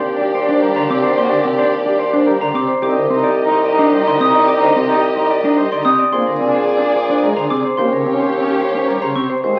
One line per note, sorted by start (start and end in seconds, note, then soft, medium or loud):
0.00 2.68 D#2 medium
0.00 0.12 G4 medium
0.00 2.65 G4 medium
0.00 0.12 C5 medium
0.00 2.65 D5 medium
0.07 0.30 D4 medium
0.07 0.25 D5 medium
0.20 0.39 G4 medium
0.20 0.39 G5 medium
0.34 0.53 C5 medium
0.34 0.53 D5 medium
0.39 0.59 D4 medium
0.48 0.67 D4 medium
0.48 0.67 C5 medium
0.62 0.73 G3 medium
0.62 0.80 G4 medium
0.62 0.75 A#4 medium
0.68 0.88 D4 medium
0.75 0.86 D3 medium
0.75 0.94 C5 medium
0.75 0.94 A#5 medium
0.89 1.00 C3 medium
0.89 1.08 C4 medium
0.89 1.08 G4 medium
0.89 1.08 D6 medium
0.96 1.16 D4 medium
1.03 1.16 C5 medium
1.03 1.22 C5 medium
1.17 1.27 A#3 medium
1.17 1.35 G4 medium
1.17 1.35 C5 medium
1.17 1.36 C6 medium
1.25 1.45 D4 medium
1.30 1.41 D3 medium
1.30 1.49 A#4 medium
1.44 1.55 C3 medium
1.44 1.63 C4 medium
1.44 1.63 G5 medium
1.54 1.74 D4 medium
1.58 1.77 G4 medium
1.58 1.77 C5 medium
1.73 1.91 D5 medium
1.82 2.03 D4 medium
1.82 2.04 G4 medium
1.82 2.04 G5 medium
1.99 2.18 C5 medium
1.99 2.18 D5 medium
2.12 2.32 D4 soft
2.12 2.32 D4 medium
2.12 2.32 C5 medium
2.27 2.38 G3 medium
2.27 2.45 G4 medium
2.27 2.40 A#4 medium
2.41 2.52 D3 medium
2.41 2.61 D4 soft
2.41 2.59 C5 medium
2.41 2.59 A#5 medium
2.54 2.66 C3 medium
2.54 2.73 C4 medium
2.54 2.73 G4 medium
2.54 2.73 D6 medium
2.68 2.87 C5 medium
2.82 5.98 C2 medium
2.82 2.93 C4 medium
2.82 3.03 D#4 soft
2.82 3.01 G4 medium
2.82 5.95 G4 medium
2.82 3.01 D5 medium
2.82 5.96 D#5 medium
2.82 3.01 D6 medium
2.96 3.07 D3 medium
2.96 3.14 C5 medium
3.10 3.21 C3 medium
3.10 3.28 C4 medium
3.10 3.32 D#4 medium
3.10 3.28 C6 medium
3.23 3.42 G4 medium
3.23 3.42 D5 medium
3.38 3.61 D#4 medium
3.38 3.56 D#5 medium
3.51 3.69 G4 medium
3.51 3.69 C6 medium
3.65 3.83 D5 medium
3.65 3.83 D#5 medium
3.70 3.90 D#4 medium
3.79 3.97 D4 medium
3.79 3.97 D5 medium
3.93 4.04 G3 medium
3.93 4.11 G4 medium
3.93 4.06 C5 medium
3.99 4.19 D#4 medium
4.06 4.17 D3 medium
4.06 4.24 D5 medium
4.06 4.25 C6 medium
4.20 4.31 C3 medium
4.20 4.38 C4 medium
4.20 4.38 G4 medium
4.20 4.39 D#6 medium
4.28 4.47 D#4 medium
4.34 4.47 D5 medium
4.34 4.52 D5 medium
4.48 4.58 C4 medium
4.48 4.66 G4 medium
4.48 4.66 D5 medium
4.48 4.66 D6 medium
4.56 4.76 D#4 medium
4.61 4.72 D3 medium
4.61 4.79 C5 medium
4.76 4.86 C3 medium
4.76 4.94 C4 medium
4.76 4.93 C6 medium
4.85 5.05 D#4 medium
4.85 5.07 G4 medium
4.90 5.07 D5 medium
5.02 5.20 D#5 medium
5.14 5.34 D#4 medium
5.14 5.35 G4 medium
5.14 5.34 C6 medium
5.29 5.48 D5 medium
5.29 5.48 D#5 medium
5.43 5.62 D4 medium
5.43 5.63 D#4 soft
5.43 5.62 D5 medium
5.57 5.68 G3 medium
5.57 5.76 G4 medium
5.57 5.72 C5 medium
5.72 5.83 D3 medium
5.72 5.92 D#4 soft
5.72 5.90 D5 medium
5.72 5.90 C6 medium
5.85 5.96 C3 medium
5.85 6.03 C4 medium
5.85 6.04 G4 medium
5.85 6.03 D#6 medium
5.99 6.17 D5 medium
6.13 7.63 A#2 medium
6.13 6.24 A#3 medium
6.13 6.35 D4 medium
6.13 6.31 G#4 medium
6.13 7.61 G#4 medium
6.13 6.31 C5 medium
6.13 7.61 D5 medium
6.13 6.31 C6 medium
6.27 6.37 D3 medium
6.27 6.45 A#4 medium
6.40 6.51 C3 medium
6.40 6.58 C4 medium
6.40 6.64 D4 medium
6.40 6.59 G#5 medium
6.54 6.72 G#4 medium
6.54 6.72 C5 medium
6.68 6.79 C4 medium
6.68 6.86 D5 medium
6.74 6.95 D4 medium
6.81 6.95 G#4 medium
6.81 6.99 G#5 soft
6.94 7.14 C5 medium
6.94 7.13 D5 medium
7.04 7.25 D4 medium
7.09 7.27 D4 medium
7.09 7.27 C5 medium
7.23 7.34 G#3 medium
7.23 7.41 G#4 medium
7.23 7.37 A#4 medium
7.35 7.47 D3 medium
7.35 7.56 D4 soft
7.35 7.55 C5 soft
7.35 7.55 A#5 medium
7.50 7.61 C3 medium
7.50 7.69 C4 medium
7.50 7.69 G#4 medium
7.50 7.69 D6 medium
7.64 7.77 C5 medium
7.64 7.82 C5 medium
7.77 9.29 D#2 medium
7.77 7.89 A#3 medium
7.77 8.00 C#4 soft
7.77 9.26 G4 medium
7.77 7.96 G4 medium
7.77 7.96 C5 medium
7.77 9.26 C#5 medium
7.77 7.96 C6 medium
7.92 8.02 C#3 medium
7.92 8.10 A#4 medium
8.06 8.16 C3 soft
8.06 8.24 C4 medium
8.06 8.30 C#4 medium
8.06 8.24 G5 soft
8.20 8.38 G4 medium
8.20 8.37 C5 medium
8.33 8.43 C4 soft
8.33 8.51 C#5 soft
8.39 8.60 C#4 medium
8.48 8.65 G4 medium
8.48 8.65 G5 medium
8.61 8.79 C5 medium
8.61 8.79 C#5 medium
8.69 8.90 C#4 medium
8.74 8.93 C#4 medium
8.74 8.92 C5 medium
8.88 8.98 G3 soft
8.88 9.06 G4 soft
8.88 9.01 A#4 medium
9.00 9.12 C#3 medium
9.00 9.21 C#4 soft
9.00 9.20 C5 medium
9.00 9.20 A#5 medium
9.15 9.27 C3 medium
9.15 9.34 C4 medium
9.15 9.34 G4 medium
9.15 9.34 C#6 medium
9.30 9.43 C5 medium
9.44 9.59 D#2 medium
9.44 9.54 G#3 medium
9.44 9.59 C4 soft
9.44 9.59 G#4 medium
9.44 9.59 C5 medium